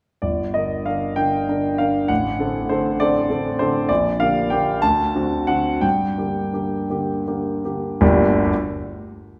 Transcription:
0.22 G1 D5
0.54 D3 D4 A#4 D#5
0.86 D3 D4 A#4 F5
1.16 D3 D4 A#4 G5
1.48 D3 D4 A#4
1.78 D3 D4 A#4 F5
2.08 A1 F#5
2.39 D3 C4 A4
2.69 D3 C4 A4 C5
3.00 D3 C4 A4 D5
3.30 D3 C4 A4
3.59 D3 C4 A4 C5
3.89 A#1 D5
4.20 D3 A#3 G4 F5
4.50 D3 A#3 G4 G5
4.82 D2 A5
5.15 D3 C4 F#4
5.47 D3 C4 F#4 F#5
5.81 G2 G5
6.18 D3 A#3 G4
6.53 D3 A#3 G4
6.90 D3 A#3 G4
7.27 D3 A#3 G4
7.65 D3 A#3 G4
8.01 G1 D2 G3 A#3 D4 G4

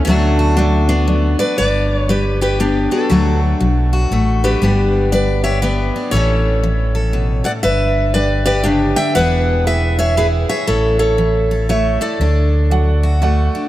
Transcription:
0.05 D2 D3 F#3 A3 D4
0.09 D4 F#4
0.39 F#4
0.56 F#3 A3 D4 F#4 A4 D5
0.89 B3 D4
1.07 F#3 D4 F#4 A4 D5
1.39 B4 D5
1.58 G1 G2 D4 B4 D5
1.97 C#5
2.09 G3 G4 B4
2.41 G4 B4
2.60 D3 B3 D4 G4
2.91 D4 F#4 A4
3.10 D2 D3 F#3 A3 D4 F#4
3.60 B1 F#3
3.93 F#4
4.11 A1 A2 A3
4.44 D4 G4 B4
4.62 G1 G2 G3 B3 D4 G4
5.12 G3 B4 D5
5.44 G4 C#5 E5
5.62 D3 B3 B4 D5
5.96 D4
6.11 A1 A2 E3 C#4 A4 C#5
6.16 E4 A4
6.63 E3
6.95 A4
7.13 B2
7.44 A2 D5 F#5
7.63 G1 G2 D4 B4 E5
8.14 G3 D4 G4 B4 D5
8.46 G4 B4 D5
8.64 C#3 D4 G4 B4 D5
8.96 D3 E5 G5
9.15 E1 E3 B3 E4 G#4 B4 F#5
9.66 B3 E4 G#4 B4 E5
9.99 G#4 C#5 E5
10.17 B2 E4 G#4 B4 E5
10.49 G#4 C#5 E5
10.67 A1 A2 E4 A4 C#5
10.99 A4 C#5
11.18 E3 E4 A4 C#5 E5
11.51 A4
11.69 A2 A3 E4 A4 C#5 E5
12.01 E4 A4 D5
12.20 D2 D3 D4
12.70 F#3 F#4 A4 D5 F#5
13.03 F#4
13.22 A2 A3 F#4 A4 D5 F#5
13.55 D4

